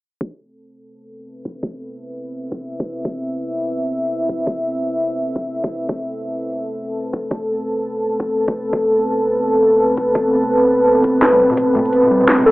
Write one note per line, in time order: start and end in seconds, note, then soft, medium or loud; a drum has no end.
0.21 12.51 C4 medium
0.21 kick loud
0.32 12.51 A4 medium
0.85 12.51 B4 medium
1.03 6.72 E5 medium
1.45 kick medium
1.63 kick loud
2.52 kick medium
2.80 kick loud
3.05 kick loud
4.29 kick medium
4.47 kick loud
5.36 kick medium
5.64 kick medium
5.89 kick loud
6.71 12.40 A5 medium
7.13 kick medium
7.31 kick loud
8.20 kick medium
8.48 kick medium
8.73 kick loud
9.97 kick medium
10.15 kick loud
11.04 kick medium
11.22 snare medium
11.32 high tom medium
11.50 mid tom medium
11.57 kick loud
11.57 closed hi-hat medium
11.57 mid tom medium
11.75 11.87 A3 medium
11.75 mid tom medium
11.85 closed hi-hat soft
11.93 closed hi-hat medium
12.03 mid tom medium
12.11 12.45 G3 medium
12.21 mid tom medium
12.28 snare loud
12.28 closed hi-hat medium
12.39 12.51 E5 medium
12.39 mid tom medium
12.46 12.51 A4 loud